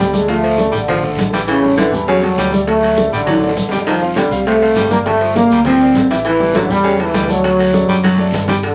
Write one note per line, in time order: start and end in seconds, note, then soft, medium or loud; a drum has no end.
0.00 0.68 D2 medium
0.00 0.11 G3 medium
0.00 0.21 G3 medium
0.00 low timbale medium
0.13 0.29 G#3 medium
0.13 0.26 A3 medium
0.13 0.26 A4 medium
0.13 0.26 D5 medium
0.13 high conga medium
0.13 short guiro medium
0.13 maracas soft
0.28 0.53 F3 medium
0.28 0.71 A3 medium
0.28 0.53 F4 medium
0.28 0.53 F5 medium
0.28 high bongo medium
0.28 high conga soft
0.28 high timbale medium
0.28 long guiro medium
0.28 maracas medium
0.43 0.59 F3 medium
0.43 high bongo soft
0.43 high timbale medium
0.43 maracas soft
0.58 0.83 A3 medium
0.58 0.83 A4 medium
0.58 0.83 D5 medium
0.58 high bongo medium
0.58 high conga loud
0.58 low timbale medium
0.58 short guiro medium
0.58 maracas medium
0.72 1.15 A1 loud
0.72 1.33 D3 medium
0.72 0.80 G3 medium
0.72 high conga soft
0.72 short guiro medium
0.72 maracas soft
0.88 1.11 F3 medium
0.88 1.01 F3 medium
0.88 1.01 F4 medium
0.88 1.01 F5 medium
0.88 high bongo medium
0.88 high conga soft
0.88 low conga medium
0.88 high timbale medium
0.88 long guiro medium
0.88 maracas medium
1.03 1.28 A3 medium
1.03 1.28 A4 medium
1.03 1.28 D5 medium
1.03 high bongo soft
1.03 high conga soft
1.03 low conga medium
1.03 maracas soft
1.18 1.87 A1 medium
1.18 high bongo medium
1.18 low bongo medium
1.18 high conga medium
1.18 high timbale medium
1.18 low timbale medium
1.18 short guiro medium
1.18 maracas medium
1.33 1.58 E3 medium
1.33 1.41 G3 medium
1.33 1.58 E4 medium
1.33 1.58 E5 medium
1.33 high bongo soft
1.33 high timbale medium
1.33 short guiro medium
1.33 maracas soft
1.48 1.76 C#3 medium
1.48 1.64 E3 medium
1.48 high bongo medium
1.48 high conga soft
1.48 high timbale loud
1.48 long guiro medium
1.48 maracas medium
1.63 1.75 G3 medium
1.63 1.75 G4 medium
1.63 1.75 A4 medium
1.63 high conga soft
1.63 maracas soft
1.77 1.93 D3 medium
1.77 2.05 E3 medium
1.77 1.90 E3 medium
1.77 1.90 E4 medium
1.77 1.90 E5 medium
1.77 high bongo medium
1.77 high conga loud
1.77 high timbale medium
1.77 low timbale medium
1.77 short guiro medium
1.77 maracas medium
1.92 2.34 E2 loud
1.92 2.17 G3 medium
1.92 2.17 G4 medium
1.92 2.17 A4 medium
1.92 high conga soft
1.92 short guiro medium
1.92 maracas soft
2.07 2.23 C#3 medium
2.07 2.49 F#3 medium
2.07 high bongo medium
2.07 high conga soft
2.07 high timbale medium
2.07 long guiro medium
2.07 maracas medium
2.23 2.47 G3 medium
2.23 2.47 G4 medium
2.23 2.48 A4 medium
2.23 high conga soft
2.23 high timbale medium
2.23 maracas soft
2.38 3.07 D2 medium
2.38 2.54 G3 medium
2.38 high bongo medium
2.38 low bongo medium
2.38 high conga medium
2.38 low timbale medium
2.38 short guiro medium
2.38 maracas medium
2.52 2.59 G3 medium
2.52 2.65 A3 medium
2.52 2.65 A4 medium
2.52 2.65 D5 medium
2.52 high conga medium
2.52 short guiro medium
2.52 maracas soft
2.66 2.92 F#3 medium
2.66 3.08 A3 loud
2.66 2.92 F#4 medium
2.66 2.92 F#5 medium
2.66 high bongo medium
2.66 high conga soft
2.66 high timbale medium
2.66 long guiro medium
2.66 maracas medium
2.82 2.98 F#3 medium
2.82 high bongo soft
2.82 high conga soft
2.82 high timbale medium
2.82 maracas soft
2.97 3.22 A3 medium
2.97 3.22 A4 medium
2.97 3.22 D5 medium
2.97 high bongo medium
2.97 high conga loud
2.97 low timbale medium
2.97 short guiro medium
2.97 maracas medium
3.11 3.54 A1 medium
3.11 3.67 D3 medium
3.11 3.20 G3 medium
3.11 high conga soft
3.11 short guiro medium
3.11 maracas soft
3.26 3.50 F#3 medium
3.26 3.39 F#3 medium
3.26 3.39 F#4 medium
3.26 3.40 F#5 medium
3.26 high bongo medium
3.26 high conga soft
3.26 low conga medium
3.26 high timbale medium
3.26 long guiro medium
3.26 maracas medium
3.38 high timbale medium
3.43 3.67 A3 medium
3.43 3.67 A4 medium
3.43 3.67 D5 medium
3.43 high bongo soft
3.43 high conga soft
3.43 maracas soft
3.49 low timbale medium
3.57 4.26 F1 medium
3.57 high bongo medium
3.57 low bongo medium
3.57 high conga medium
3.57 short guiro medium
3.57 maracas medium
3.69 3.79 G3 medium
3.69 3.97 G3 medium
3.69 3.97 G4 medium
3.69 high bongo soft
3.69 low timbale medium
3.69 short guiro medium
3.69 maracas soft
3.73 3.97 G5 medium
3.78 low timbale medium
3.86 4.02 D#3 medium
3.86 4.14 F3 loud
3.86 high bongo medium
3.86 high conga soft
3.86 high timbale loud
3.86 long guiro medium
3.86 maracas medium
4.02 4.14 C4 medium
4.02 4.14 C5 medium
4.02 4.14 F5 medium
4.02 high conga soft
4.02 maracas soft
4.16 4.31 D3 medium
4.16 4.46 G3 medium
4.16 4.29 G3 medium
4.16 4.29 G4 medium
4.16 4.29 G5 medium
4.16 high bongo medium
4.16 high conga loud
4.16 high timbale medium
4.16 low timbale medium
4.16 short guiro medium
4.16 maracas medium
4.30 4.72 C2 loud
4.30 4.56 C4 medium
4.30 4.56 C5 medium
4.30 4.56 F5 medium
4.30 high conga soft
4.30 short guiro medium
4.30 maracas soft
4.46 4.62 C3 medium
4.46 4.88 A3 loud
4.46 high bongo medium
4.46 high conga soft
4.46 high timbale medium
4.46 long guiro medium
4.46 maracas medium
4.61 4.86 C4 medium
4.61 4.86 C5 medium
4.61 4.86 F5 medium
4.61 high conga soft
4.61 high timbale medium
4.61 maracas soft
4.75 5.45 G1 medium
4.75 4.99 G3 medium
4.75 high bongo medium
4.75 low bongo medium
4.75 high conga medium
4.75 low timbale medium
4.75 short guiro medium
4.75 maracas medium
4.90 5.03 A#3 medium
4.90 4.97 A#3 loud
4.90 5.03 A#4 medium
4.90 5.03 D5 medium
4.90 high conga medium
4.90 short guiro medium
4.90 maracas soft
5.05 5.30 G3 medium
5.05 5.33 A3 loud
5.05 5.30 G4 medium
5.05 5.30 G5 medium
5.05 high bongo medium
5.05 high timbale loud
5.05 long guiro medium
5.05 maracas medium
5.20 5.36 F3 medium
5.20 high bongo soft
5.20 high conga soft
5.20 high timbale medium
5.20 maracas soft
5.35 5.60 A#3 medium
5.35 5.63 A#3 loud
5.35 5.60 A#4 medium
5.35 5.60 D5 medium
5.35 high bongo medium
5.35 high conga loud
5.35 low timbale medium
5.35 short guiro medium
5.35 maracas medium
5.50 5.92 D2 medium
5.50 5.59 G3 medium
5.50 high conga soft
5.50 short guiro medium
5.50 maracas soft
5.65 5.90 F3 medium
5.65 5.77 G3 medium
5.65 6.07 C4 loud
5.65 5.78 G4 medium
5.65 5.78 G5 medium
5.65 high bongo medium
5.65 high conga soft
5.65 low conga medium
5.65 high timbale medium
5.65 long guiro medium
5.65 maracas medium
5.80 6.05 A#3 medium
5.80 6.05 A#4 medium
5.80 6.05 D5 medium
5.80 high bongo soft
5.80 high conga soft
5.80 maracas soft
5.94 6.64 A1 loud
5.94 high bongo medium
5.94 low bongo medium
5.94 high conga medium
5.94 high timbale medium
5.94 low timbale medium
5.94 short guiro medium
5.94 maracas medium
6.10 6.35 E3 medium
6.10 6.18 G3 medium
6.10 6.35 E4 medium
6.10 6.35 E5 medium
6.10 high bongo soft
6.10 high timbale medium
6.10 short guiro medium
6.10 maracas soft
6.25 6.40 E3 medium
6.25 6.53 E3 loud
6.25 high bongo medium
6.25 high conga soft
6.25 high timbale medium
6.25 long guiro medium
6.25 maracas medium
6.40 6.52 G3 medium
6.40 6.52 G4 medium
6.40 6.52 A4 medium
6.40 maracas soft
6.54 6.70 D3 medium
6.54 6.67 E3 medium
6.54 6.70 F#3 medium
6.54 6.67 E4 medium
6.54 6.67 E5 medium
6.54 high bongo medium
6.54 high conga loud
6.54 high timbale loud
6.54 low timbale medium
6.54 short guiro medium
6.54 maracas medium
6.69 7.11 E2 medium
6.69 6.94 G3 medium
6.69 6.98 G3 loud
6.69 6.94 G4 medium
6.69 6.94 A4 medium
6.69 high conga soft
6.69 short guiro medium
6.69 maracas soft
6.84 7.00 C#3 medium
6.84 high bongo medium
6.84 high conga soft
6.84 high timbale medium
6.84 maracas medium
6.99 7.30 E3 loud
6.99 7.23 G3 medium
6.99 7.24 G4 medium
6.99 7.24 A4 medium
6.99 high conga soft
6.99 high timbale medium
6.99 maracas soft
7.14 7.83 D2 medium
7.14 7.30 G3 medium
7.14 high bongo medium
7.14 low bongo medium
7.14 high conga medium
7.14 low timbale medium
7.14 short guiro medium
7.14 maracas medium
7.28 8.33 F#3 medium
7.28 7.41 A3 medium
7.28 7.41 A4 medium
7.28 7.41 D5 medium
7.28 high conga medium
7.28 short guiro medium
7.28 maracas soft
7.44 7.68 F#3 medium
7.44 7.68 F#4 medium
7.44 7.69 F#5 medium
7.44 high bongo medium
7.44 high conga soft
7.44 high timbale loud
7.44 long guiro medium
7.44 maracas medium
7.58 7.75 F#3 medium
7.58 high bongo soft
7.58 high conga soft
7.58 high timbale medium
7.58 maracas soft
7.73 7.98 A3 medium
7.73 7.98 A4 medium
7.73 7.99 D5 medium
7.73 high bongo medium
7.73 high conga loud
7.73 low timbale medium
7.73 short guiro medium
7.73 maracas medium
7.88 8.30 F#2 medium
7.88 7.96 G3 medium
7.88 high conga soft
7.88 short guiro medium
7.88 maracas soft
8.03 8.27 F#3 medium
8.03 8.16 F#3 medium
8.03 8.16 F#4 medium
8.03 8.16 F#5 medium
8.03 high bongo medium
8.03 high conga medium
8.03 high timbale medium
8.03 long guiro medium
8.03 maracas medium
8.17 8.43 A3 medium
8.17 8.43 A4 medium
8.17 8.43 D5 medium
8.17 high bongo soft
8.17 high conga medium
8.17 maracas soft
8.32 8.75 G2 medium
8.32 high bongo medium
8.32 low bongo medium
8.32 low conga medium
8.32 high timbale medium
8.32 low timbale medium
8.32 short guiro medium
8.32 maracas medium
8.48 8.61 G3 medium
8.48 8.56 G3 medium
8.48 8.61 G4 medium
8.48 8.61 G5 medium
8.48 high bongo soft
8.48 low conga loud
8.48 high timbale medium
8.48 short guiro medium
8.48 maracas soft
8.62 8.75 D3 medium
8.62 high bongo medium
8.62 high conga soft
8.62 high timbale loud
8.62 maracas medium